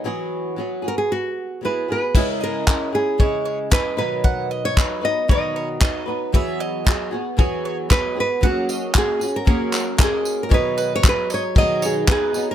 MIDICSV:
0, 0, Header, 1, 5, 480
1, 0, Start_track
1, 0, Key_signature, 5, "major"
1, 0, Tempo, 523104
1, 52, Time_signature, 4, 2, 24, 8
1, 11515, End_track
2, 0, Start_track
2, 0, Title_t, "Mandolin"
2, 0, Program_c, 0, 25
2, 1975, Note_on_c, 0, 76, 93
2, 2207, Note_off_c, 0, 76, 0
2, 2207, Note_on_c, 0, 75, 75
2, 2661, Note_off_c, 0, 75, 0
2, 2935, Note_on_c, 0, 73, 74
2, 3159, Note_off_c, 0, 73, 0
2, 3170, Note_on_c, 0, 73, 64
2, 3286, Note_off_c, 0, 73, 0
2, 3407, Note_on_c, 0, 75, 74
2, 3749, Note_off_c, 0, 75, 0
2, 3891, Note_on_c, 0, 78, 93
2, 4120, Note_off_c, 0, 78, 0
2, 4138, Note_on_c, 0, 75, 73
2, 4587, Note_off_c, 0, 75, 0
2, 4857, Note_on_c, 0, 73, 79
2, 5084, Note_off_c, 0, 73, 0
2, 5102, Note_on_c, 0, 73, 65
2, 5212, Note_off_c, 0, 73, 0
2, 5340, Note_on_c, 0, 75, 78
2, 5676, Note_off_c, 0, 75, 0
2, 5823, Note_on_c, 0, 76, 101
2, 6047, Note_off_c, 0, 76, 0
2, 6059, Note_on_c, 0, 75, 80
2, 6508, Note_off_c, 0, 75, 0
2, 6780, Note_on_c, 0, 73, 67
2, 7005, Note_off_c, 0, 73, 0
2, 7022, Note_on_c, 0, 73, 66
2, 7132, Note_off_c, 0, 73, 0
2, 7255, Note_on_c, 0, 75, 83
2, 7592, Note_off_c, 0, 75, 0
2, 7737, Note_on_c, 0, 78, 102
2, 7963, Note_off_c, 0, 78, 0
2, 7978, Note_on_c, 0, 75, 77
2, 8427, Note_off_c, 0, 75, 0
2, 8693, Note_on_c, 0, 73, 76
2, 8921, Note_off_c, 0, 73, 0
2, 8933, Note_on_c, 0, 73, 67
2, 9047, Note_off_c, 0, 73, 0
2, 9174, Note_on_c, 0, 75, 80
2, 9512, Note_off_c, 0, 75, 0
2, 9649, Note_on_c, 0, 73, 84
2, 9878, Note_off_c, 0, 73, 0
2, 9888, Note_on_c, 0, 71, 77
2, 10228, Note_off_c, 0, 71, 0
2, 10371, Note_on_c, 0, 75, 74
2, 10485, Note_off_c, 0, 75, 0
2, 10849, Note_on_c, 0, 73, 78
2, 10964, Note_off_c, 0, 73, 0
2, 11083, Note_on_c, 0, 71, 86
2, 11424, Note_off_c, 0, 71, 0
2, 11515, End_track
3, 0, Start_track
3, 0, Title_t, "Nylon-string guitar"
3, 0, Program_c, 1, 24
3, 807, Note_on_c, 1, 70, 81
3, 895, Note_off_c, 1, 70, 0
3, 899, Note_on_c, 1, 68, 77
3, 1019, Note_off_c, 1, 68, 0
3, 1026, Note_on_c, 1, 66, 80
3, 1508, Note_off_c, 1, 66, 0
3, 1511, Note_on_c, 1, 64, 55
3, 1516, Note_on_c, 1, 71, 60
3, 1749, Note_off_c, 1, 71, 0
3, 1760, Note_on_c, 1, 71, 62
3, 1838, Note_off_c, 1, 64, 0
3, 2108, Note_off_c, 1, 71, 0
3, 2108, Note_on_c, 1, 70, 62
3, 2231, Note_off_c, 1, 70, 0
3, 2235, Note_on_c, 1, 70, 86
3, 2702, Note_off_c, 1, 70, 0
3, 2705, Note_on_c, 1, 68, 73
3, 3416, Note_off_c, 1, 68, 0
3, 3420, Note_on_c, 1, 71, 80
3, 3645, Note_off_c, 1, 71, 0
3, 3656, Note_on_c, 1, 71, 84
3, 4264, Note_off_c, 1, 71, 0
3, 4268, Note_on_c, 1, 73, 98
3, 4628, Note_off_c, 1, 73, 0
3, 4632, Note_on_c, 1, 75, 91
3, 4863, Note_off_c, 1, 75, 0
3, 4874, Note_on_c, 1, 75, 98
3, 5547, Note_off_c, 1, 75, 0
3, 7266, Note_on_c, 1, 71, 93
3, 7507, Note_off_c, 1, 71, 0
3, 7526, Note_on_c, 1, 71, 87
3, 7756, Note_off_c, 1, 71, 0
3, 7756, Note_on_c, 1, 66, 82
3, 8238, Note_off_c, 1, 66, 0
3, 8242, Note_on_c, 1, 68, 95
3, 8590, Note_on_c, 1, 70, 78
3, 8598, Note_off_c, 1, 68, 0
3, 9213, Note_on_c, 1, 68, 80
3, 9264, Note_off_c, 1, 70, 0
3, 9562, Note_off_c, 1, 68, 0
3, 9572, Note_on_c, 1, 70, 66
3, 9668, Note_off_c, 1, 70, 0
3, 9672, Note_on_c, 1, 71, 81
3, 10032, Note_off_c, 1, 71, 0
3, 10053, Note_on_c, 1, 73, 95
3, 10155, Note_off_c, 1, 73, 0
3, 10175, Note_on_c, 1, 71, 95
3, 10400, Note_off_c, 1, 71, 0
3, 10405, Note_on_c, 1, 73, 85
3, 10624, Note_off_c, 1, 73, 0
3, 10628, Note_on_c, 1, 75, 101
3, 10866, Note_off_c, 1, 75, 0
3, 10877, Note_on_c, 1, 68, 75
3, 11088, Note_off_c, 1, 68, 0
3, 11114, Note_on_c, 1, 68, 83
3, 11472, Note_off_c, 1, 68, 0
3, 11480, Note_on_c, 1, 70, 71
3, 11515, Note_off_c, 1, 70, 0
3, 11515, End_track
4, 0, Start_track
4, 0, Title_t, "Nylon-string guitar"
4, 0, Program_c, 2, 24
4, 36, Note_on_c, 2, 52, 68
4, 41, Note_on_c, 2, 54, 78
4, 45, Note_on_c, 2, 59, 74
4, 51, Note_on_c, 2, 66, 84
4, 52, Note_on_c, 2, 68, 84
4, 506, Note_off_c, 2, 54, 0
4, 517, Note_on_c, 2, 54, 48
4, 518, Note_off_c, 2, 59, 0
4, 523, Note_off_c, 2, 66, 0
4, 529, Note_on_c, 2, 59, 53
4, 534, Note_on_c, 2, 66, 55
4, 540, Note_off_c, 2, 68, 0
4, 544, Note_on_c, 2, 68, 54
4, 545, Note_off_c, 2, 52, 0
4, 743, Note_off_c, 2, 68, 0
4, 754, Note_on_c, 2, 68, 45
4, 761, Note_off_c, 2, 66, 0
4, 765, Note_off_c, 2, 54, 0
4, 771, Note_off_c, 2, 59, 0
4, 772, Note_on_c, 2, 66, 38
4, 782, Note_on_c, 2, 59, 32
4, 1477, Note_on_c, 2, 54, 47
4, 1480, Note_off_c, 2, 59, 0
4, 1488, Note_off_c, 2, 66, 0
4, 1491, Note_on_c, 2, 59, 49
4, 1499, Note_on_c, 2, 66, 48
4, 1505, Note_off_c, 2, 68, 0
4, 1511, Note_on_c, 2, 68, 54
4, 1718, Note_off_c, 2, 68, 0
4, 1725, Note_off_c, 2, 54, 0
4, 1729, Note_on_c, 2, 68, 41
4, 1732, Note_off_c, 2, 59, 0
4, 1734, Note_off_c, 2, 66, 0
4, 1745, Note_on_c, 2, 66, 35
4, 1763, Note_on_c, 2, 59, 36
4, 1968, Note_on_c, 2, 49, 65
4, 1971, Note_off_c, 2, 68, 0
4, 1979, Note_off_c, 2, 59, 0
4, 1979, Note_off_c, 2, 66, 0
4, 1980, Note_on_c, 2, 56, 76
4, 1983, Note_on_c, 2, 61, 78
4, 1984, Note_on_c, 2, 64, 78
4, 1990, Note_on_c, 2, 68, 81
4, 2434, Note_off_c, 2, 56, 0
4, 2443, Note_off_c, 2, 61, 0
4, 2445, Note_on_c, 2, 56, 47
4, 2451, Note_off_c, 2, 49, 0
4, 2453, Note_off_c, 2, 64, 0
4, 2454, Note_on_c, 2, 61, 48
4, 2462, Note_off_c, 2, 68, 0
4, 2464, Note_on_c, 2, 64, 51
4, 2475, Note_on_c, 2, 68, 48
4, 2673, Note_off_c, 2, 68, 0
4, 2684, Note_on_c, 2, 68, 48
4, 2689, Note_off_c, 2, 56, 0
4, 2689, Note_off_c, 2, 64, 0
4, 2694, Note_off_c, 2, 61, 0
4, 2700, Note_on_c, 2, 64, 43
4, 2712, Note_on_c, 2, 61, 38
4, 2914, Note_off_c, 2, 61, 0
4, 2917, Note_on_c, 2, 49, 67
4, 2924, Note_off_c, 2, 64, 0
4, 2925, Note_on_c, 2, 56, 65
4, 2925, Note_on_c, 2, 61, 69
4, 2929, Note_off_c, 2, 68, 0
4, 2935, Note_on_c, 2, 64, 71
4, 2941, Note_on_c, 2, 68, 69
4, 3385, Note_off_c, 2, 56, 0
4, 3395, Note_off_c, 2, 61, 0
4, 3396, Note_on_c, 2, 56, 55
4, 3405, Note_off_c, 2, 49, 0
4, 3405, Note_off_c, 2, 64, 0
4, 3406, Note_on_c, 2, 61, 53
4, 3411, Note_off_c, 2, 68, 0
4, 3416, Note_on_c, 2, 64, 60
4, 3422, Note_on_c, 2, 68, 57
4, 3638, Note_off_c, 2, 64, 0
4, 3638, Note_off_c, 2, 68, 0
4, 3641, Note_on_c, 2, 63, 59
4, 3641, Note_on_c, 2, 71, 59
4, 3644, Note_off_c, 2, 61, 0
4, 3645, Note_off_c, 2, 56, 0
4, 3648, Note_on_c, 2, 59, 59
4, 3653, Note_on_c, 2, 54, 58
4, 3658, Note_on_c, 2, 47, 52
4, 3658, Note_on_c, 2, 51, 48
4, 4359, Note_off_c, 2, 54, 0
4, 4363, Note_on_c, 2, 54, 47
4, 4368, Note_off_c, 2, 59, 0
4, 4368, Note_off_c, 2, 63, 0
4, 4372, Note_on_c, 2, 59, 51
4, 4376, Note_off_c, 2, 47, 0
4, 4376, Note_off_c, 2, 51, 0
4, 4382, Note_off_c, 2, 71, 0
4, 4383, Note_on_c, 2, 63, 59
4, 4386, Note_on_c, 2, 71, 57
4, 4587, Note_off_c, 2, 71, 0
4, 4598, Note_on_c, 2, 71, 52
4, 4599, Note_off_c, 2, 63, 0
4, 4608, Note_off_c, 2, 54, 0
4, 4610, Note_off_c, 2, 59, 0
4, 4610, Note_on_c, 2, 63, 46
4, 4621, Note_on_c, 2, 59, 43
4, 4630, Note_on_c, 2, 54, 39
4, 4837, Note_off_c, 2, 54, 0
4, 4845, Note_off_c, 2, 59, 0
4, 4845, Note_on_c, 2, 47, 69
4, 4846, Note_off_c, 2, 63, 0
4, 4846, Note_off_c, 2, 71, 0
4, 4848, Note_on_c, 2, 54, 75
4, 4849, Note_on_c, 2, 51, 71
4, 4856, Note_on_c, 2, 59, 74
4, 4857, Note_on_c, 2, 63, 65
4, 4861, Note_on_c, 2, 71, 74
4, 5317, Note_off_c, 2, 54, 0
4, 5321, Note_on_c, 2, 54, 60
4, 5325, Note_off_c, 2, 63, 0
4, 5327, Note_off_c, 2, 59, 0
4, 5329, Note_off_c, 2, 47, 0
4, 5331, Note_off_c, 2, 51, 0
4, 5331, Note_on_c, 2, 59, 50
4, 5336, Note_on_c, 2, 63, 56
4, 5342, Note_off_c, 2, 71, 0
4, 5346, Note_on_c, 2, 71, 58
4, 5548, Note_off_c, 2, 71, 0
4, 5559, Note_on_c, 2, 71, 51
4, 5560, Note_off_c, 2, 63, 0
4, 5567, Note_off_c, 2, 54, 0
4, 5567, Note_off_c, 2, 59, 0
4, 5571, Note_on_c, 2, 63, 47
4, 5578, Note_on_c, 2, 59, 49
4, 5586, Note_on_c, 2, 54, 40
4, 5797, Note_off_c, 2, 54, 0
4, 5801, Note_off_c, 2, 59, 0
4, 5803, Note_on_c, 2, 52, 82
4, 5807, Note_off_c, 2, 71, 0
4, 5808, Note_on_c, 2, 54, 82
4, 5812, Note_off_c, 2, 63, 0
4, 5812, Note_on_c, 2, 59, 96
4, 5816, Note_on_c, 2, 66, 86
4, 5818, Note_on_c, 2, 68, 84
4, 6277, Note_off_c, 2, 54, 0
4, 6281, Note_on_c, 2, 54, 66
4, 6284, Note_off_c, 2, 59, 0
4, 6288, Note_off_c, 2, 52, 0
4, 6295, Note_on_c, 2, 59, 62
4, 6304, Note_off_c, 2, 66, 0
4, 6308, Note_on_c, 2, 66, 64
4, 6309, Note_off_c, 2, 68, 0
4, 6313, Note_on_c, 2, 68, 71
4, 6514, Note_off_c, 2, 68, 0
4, 6525, Note_on_c, 2, 68, 60
4, 6526, Note_off_c, 2, 66, 0
4, 6527, Note_off_c, 2, 54, 0
4, 6534, Note_off_c, 2, 59, 0
4, 6537, Note_on_c, 2, 66, 54
4, 6552, Note_on_c, 2, 59, 45
4, 6760, Note_off_c, 2, 59, 0
4, 6760, Note_on_c, 2, 52, 80
4, 6766, Note_off_c, 2, 68, 0
4, 6767, Note_off_c, 2, 66, 0
4, 6768, Note_on_c, 2, 54, 81
4, 6771, Note_on_c, 2, 59, 91
4, 6777, Note_on_c, 2, 68, 101
4, 6778, Note_on_c, 2, 66, 76
4, 7237, Note_off_c, 2, 54, 0
4, 7240, Note_on_c, 2, 54, 54
4, 7241, Note_off_c, 2, 59, 0
4, 7247, Note_off_c, 2, 52, 0
4, 7252, Note_on_c, 2, 59, 62
4, 7260, Note_off_c, 2, 66, 0
4, 7263, Note_off_c, 2, 68, 0
4, 7264, Note_on_c, 2, 66, 60
4, 7267, Note_on_c, 2, 68, 60
4, 7468, Note_off_c, 2, 68, 0
4, 7479, Note_on_c, 2, 68, 47
4, 7480, Note_off_c, 2, 66, 0
4, 7487, Note_off_c, 2, 54, 0
4, 7491, Note_on_c, 2, 66, 43
4, 7493, Note_off_c, 2, 59, 0
4, 7507, Note_on_c, 2, 59, 37
4, 7715, Note_on_c, 2, 54, 77
4, 7723, Note_off_c, 2, 59, 0
4, 7724, Note_off_c, 2, 68, 0
4, 7726, Note_off_c, 2, 66, 0
4, 7726, Note_on_c, 2, 58, 76
4, 7727, Note_on_c, 2, 61, 84
4, 7735, Note_on_c, 2, 68, 80
4, 7737, Note_on_c, 2, 66, 90
4, 8185, Note_off_c, 2, 58, 0
4, 8196, Note_off_c, 2, 61, 0
4, 8196, Note_on_c, 2, 58, 54
4, 8207, Note_on_c, 2, 61, 54
4, 8211, Note_off_c, 2, 66, 0
4, 8215, Note_on_c, 2, 66, 64
4, 8220, Note_off_c, 2, 68, 0
4, 8223, Note_on_c, 2, 68, 67
4, 8251, Note_off_c, 2, 54, 0
4, 8426, Note_off_c, 2, 68, 0
4, 8437, Note_on_c, 2, 68, 48
4, 8444, Note_off_c, 2, 58, 0
4, 8444, Note_off_c, 2, 66, 0
4, 8450, Note_off_c, 2, 61, 0
4, 8455, Note_on_c, 2, 66, 43
4, 8464, Note_on_c, 2, 61, 44
4, 8670, Note_on_c, 2, 54, 68
4, 8673, Note_off_c, 2, 61, 0
4, 8674, Note_off_c, 2, 66, 0
4, 8678, Note_on_c, 2, 58, 81
4, 8681, Note_off_c, 2, 68, 0
4, 8684, Note_on_c, 2, 61, 81
4, 8685, Note_on_c, 2, 66, 75
4, 8692, Note_on_c, 2, 68, 81
4, 9135, Note_off_c, 2, 58, 0
4, 9146, Note_on_c, 2, 58, 61
4, 9148, Note_off_c, 2, 61, 0
4, 9159, Note_on_c, 2, 61, 69
4, 9164, Note_off_c, 2, 66, 0
4, 9167, Note_on_c, 2, 66, 60
4, 9169, Note_off_c, 2, 68, 0
4, 9173, Note_on_c, 2, 68, 74
4, 9201, Note_off_c, 2, 54, 0
4, 9626, Note_on_c, 2, 47, 79
4, 9632, Note_off_c, 2, 58, 0
4, 9633, Note_on_c, 2, 51, 84
4, 9635, Note_on_c, 2, 54, 78
4, 9636, Note_off_c, 2, 61, 0
4, 9639, Note_on_c, 2, 59, 85
4, 9643, Note_off_c, 2, 68, 0
4, 9645, Note_off_c, 2, 66, 0
4, 9646, Note_on_c, 2, 68, 89
4, 9648, Note_on_c, 2, 63, 88
4, 10100, Note_off_c, 2, 54, 0
4, 10111, Note_on_c, 2, 54, 58
4, 10117, Note_off_c, 2, 59, 0
4, 10119, Note_off_c, 2, 47, 0
4, 10121, Note_on_c, 2, 59, 54
4, 10122, Note_off_c, 2, 51, 0
4, 10122, Note_off_c, 2, 63, 0
4, 10133, Note_on_c, 2, 63, 55
4, 10137, Note_off_c, 2, 68, 0
4, 10141, Note_on_c, 2, 68, 63
4, 10599, Note_on_c, 2, 47, 78
4, 10601, Note_off_c, 2, 54, 0
4, 10607, Note_off_c, 2, 59, 0
4, 10608, Note_on_c, 2, 51, 79
4, 10609, Note_off_c, 2, 63, 0
4, 10610, Note_on_c, 2, 59, 77
4, 10613, Note_on_c, 2, 54, 87
4, 10620, Note_off_c, 2, 68, 0
4, 10620, Note_on_c, 2, 63, 76
4, 10624, Note_on_c, 2, 68, 78
4, 11061, Note_off_c, 2, 54, 0
4, 11072, Note_on_c, 2, 54, 58
4, 11079, Note_off_c, 2, 59, 0
4, 11082, Note_on_c, 2, 59, 66
4, 11084, Note_off_c, 2, 47, 0
4, 11084, Note_off_c, 2, 63, 0
4, 11089, Note_off_c, 2, 51, 0
4, 11095, Note_on_c, 2, 63, 64
4, 11099, Note_off_c, 2, 68, 0
4, 11104, Note_on_c, 2, 68, 63
4, 11303, Note_off_c, 2, 68, 0
4, 11314, Note_off_c, 2, 63, 0
4, 11314, Note_on_c, 2, 68, 56
4, 11321, Note_off_c, 2, 54, 0
4, 11325, Note_on_c, 2, 63, 46
4, 11326, Note_off_c, 2, 59, 0
4, 11336, Note_on_c, 2, 59, 53
4, 11342, Note_on_c, 2, 54, 47
4, 11515, Note_off_c, 2, 54, 0
4, 11515, Note_off_c, 2, 59, 0
4, 11515, Note_off_c, 2, 63, 0
4, 11515, Note_off_c, 2, 68, 0
4, 11515, End_track
5, 0, Start_track
5, 0, Title_t, "Drums"
5, 1970, Note_on_c, 9, 36, 94
5, 1971, Note_on_c, 9, 49, 81
5, 2062, Note_off_c, 9, 36, 0
5, 2063, Note_off_c, 9, 49, 0
5, 2454, Note_on_c, 9, 36, 92
5, 2460, Note_on_c, 9, 39, 92
5, 2546, Note_off_c, 9, 36, 0
5, 2551, Note_off_c, 9, 39, 0
5, 2934, Note_on_c, 9, 36, 95
5, 3026, Note_off_c, 9, 36, 0
5, 3413, Note_on_c, 9, 36, 109
5, 3420, Note_on_c, 9, 39, 102
5, 3505, Note_off_c, 9, 36, 0
5, 3512, Note_off_c, 9, 39, 0
5, 3894, Note_on_c, 9, 36, 98
5, 3986, Note_off_c, 9, 36, 0
5, 4378, Note_on_c, 9, 36, 100
5, 4385, Note_on_c, 9, 39, 105
5, 4470, Note_off_c, 9, 36, 0
5, 4477, Note_off_c, 9, 39, 0
5, 4857, Note_on_c, 9, 36, 99
5, 4949, Note_off_c, 9, 36, 0
5, 5335, Note_on_c, 9, 36, 117
5, 5337, Note_on_c, 9, 39, 104
5, 5427, Note_off_c, 9, 36, 0
5, 5429, Note_off_c, 9, 39, 0
5, 5818, Note_on_c, 9, 36, 98
5, 5909, Note_off_c, 9, 36, 0
5, 6302, Note_on_c, 9, 36, 99
5, 6310, Note_on_c, 9, 39, 105
5, 6394, Note_off_c, 9, 36, 0
5, 6401, Note_off_c, 9, 39, 0
5, 6779, Note_on_c, 9, 36, 99
5, 6871, Note_off_c, 9, 36, 0
5, 7256, Note_on_c, 9, 36, 109
5, 7258, Note_on_c, 9, 39, 101
5, 7348, Note_off_c, 9, 36, 0
5, 7350, Note_off_c, 9, 39, 0
5, 7736, Note_on_c, 9, 36, 94
5, 7827, Note_off_c, 9, 36, 0
5, 7973, Note_on_c, 9, 54, 61
5, 8065, Note_off_c, 9, 54, 0
5, 8211, Note_on_c, 9, 39, 114
5, 8214, Note_on_c, 9, 36, 103
5, 8303, Note_off_c, 9, 39, 0
5, 8305, Note_off_c, 9, 36, 0
5, 8453, Note_on_c, 9, 54, 59
5, 8545, Note_off_c, 9, 54, 0
5, 8693, Note_on_c, 9, 36, 106
5, 8784, Note_off_c, 9, 36, 0
5, 8927, Note_on_c, 9, 54, 57
5, 8931, Note_on_c, 9, 39, 88
5, 9018, Note_off_c, 9, 54, 0
5, 9023, Note_off_c, 9, 39, 0
5, 9168, Note_on_c, 9, 36, 113
5, 9172, Note_on_c, 9, 39, 117
5, 9260, Note_off_c, 9, 36, 0
5, 9264, Note_off_c, 9, 39, 0
5, 9409, Note_on_c, 9, 54, 59
5, 9500, Note_off_c, 9, 54, 0
5, 9648, Note_on_c, 9, 36, 105
5, 9739, Note_off_c, 9, 36, 0
5, 9891, Note_on_c, 9, 54, 54
5, 9982, Note_off_c, 9, 54, 0
5, 10130, Note_on_c, 9, 36, 102
5, 10133, Note_on_c, 9, 39, 118
5, 10222, Note_off_c, 9, 36, 0
5, 10225, Note_off_c, 9, 39, 0
5, 10369, Note_on_c, 9, 54, 60
5, 10460, Note_off_c, 9, 54, 0
5, 10608, Note_on_c, 9, 36, 110
5, 10699, Note_off_c, 9, 36, 0
5, 10848, Note_on_c, 9, 54, 65
5, 10939, Note_off_c, 9, 54, 0
5, 11085, Note_on_c, 9, 36, 117
5, 11090, Note_on_c, 9, 39, 115
5, 11177, Note_off_c, 9, 36, 0
5, 11182, Note_off_c, 9, 39, 0
5, 11324, Note_on_c, 9, 54, 61
5, 11416, Note_off_c, 9, 54, 0
5, 11515, End_track
0, 0, End_of_file